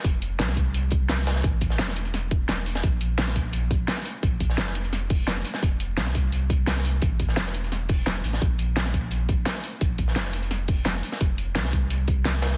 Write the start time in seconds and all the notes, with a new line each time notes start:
0.04 F1, kick, closed hi-hat
0.22 closed hi-hat
0.39 C2, snare, closed hi-hat
0.48 snare
0.57 kick, closed hi-hat
0.74 closed hi-hat
0.90 kick, closed hi-hat
1.09 snare, closed hi-hat
1.18 snare
1.27 snare, closed hi-hat, open hi-hat
1.36 snare
1.44 A1, kick, closed hi-hat
1.61 kick, closed hi-hat
1.70 snare
1.79 E1, snare, closed hi-hat
1.88 snare
1.96 closed hi-hat
2.05 closed hi-hat
2.14 snare, closed hi-hat
2.31 kick, closed hi-hat
2.48 E1, snare, closed hi-hat
2.58 snare
2.66 closed hi-hat, open hi-hat
2.75 snare
2.83 A#1, kick, closed hi-hat
3.01 closed hi-hat
3.18 snare, closed hi-hat
3.28 snare
3.36 kick, closed hi-hat
3.53 closed hi-hat
3.71 kick, closed hi-hat
3.88 snare, closed hi-hat
3.97 snare
4.05 closed hi-hat, open hi-hat
4.23 A#1, kick, closed hi-hat
4.40 kick, closed hi-hat
4.50 snare
4.57 F1, snare, closed hi-hat
4.66 snare
4.75 closed hi-hat
4.84 closed hi-hat
4.93 snare, closed hi-hat
5.10 kick, closed hi-hat, open hi-hat
5.27 snare, closed hi-hat
5.37 snare
5.44 closed hi-hat, open hi-hat
5.54 snare
5.63 F1, kick, closed hi-hat
5.80 closed hi-hat
5.97 C2, snare, closed hi-hat
6.06 snare
6.15 kick, closed hi-hat
6.32 closed hi-hat
6.50 kick, closed hi-hat
6.67 snare, closed hi-hat
6.76 snare
6.85 closed hi-hat, open hi-hat
7.02 A1, kick, closed hi-hat
7.20 kick, closed hi-hat
7.29 snare
7.36 E1, snare, closed hi-hat
7.46 snare
7.54 closed hi-hat
7.64 closed hi-hat
7.72 snare, closed hi-hat
7.89 kick, closed hi-hat, open hi-hat
8.06 snare, closed hi-hat
8.16 snare
8.24 A1, closed hi-hat, open hi-hat
8.33 snare
8.42 A#1, kick, closed hi-hat
8.59 closed hi-hat
8.76 snare, closed hi-hat
8.85 snare
8.94 kick, closed hi-hat
9.11 closed hi-hat
9.29 kick, closed hi-hat
9.46 snare, closed hi-hat
9.55 snare
9.64 closed hi-hat, open hi-hat
9.81 A#1, kick, closed hi-hat
9.98 kick, closed hi-hat
10.08 snare
10.16 F1, snare, closed hi-hat
10.25 snare
10.33 closed hi-hat
10.43 closed hi-hat
10.51 snare, closed hi-hat
10.68 kick, closed hi-hat, open hi-hat
10.85 snare, closed hi-hat
10.95 snare
11.03 closed hi-hat, open hi-hat
11.12 snare
11.21 F1, kick, closed hi-hat
11.38 closed hi-hat
11.55 C2, snare, closed hi-hat
11.65 snare
11.73 kick, closed hi-hat
11.90 closed hi-hat
12.08 kick, closed hi-hat
12.25 snare, closed hi-hat
12.34 snare
12.42 snare, closed hi-hat, open hi-hat
12.52 snare